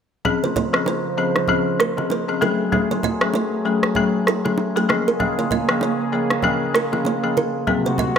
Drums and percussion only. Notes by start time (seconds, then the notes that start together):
0.25 low conga
0.44 low bongo
0.56 high bongo, low conga
0.74 cross-stick
0.86 high bongo
1.36 cross-stick, high bongo
1.48 low conga
1.80 cross-stick
1.98 low bongo
2.10 high bongo
2.42 low bongo
2.72 low conga
2.91 low bongo
3.03 high bongo, low conga
3.21 cross-stick
3.34 high bongo
3.83 cross-stick, high bongo
3.95 low conga
4.27 cross-stick
4.46 low bongo
4.58 high bongo
4.90 cross-stick, low bongo
5.20 low conga
5.39 low bongo
5.51 high bongo, low conga
5.69 cross-stick
5.81 high bongo
6.30 cross-stick, high bongo
6.42 low conga
6.74 cross-stick
6.93 low bongo
7.05 high bongo
7.37 low bongo
7.67 low conga
7.86 low bongo
7.98 high bongo, low conga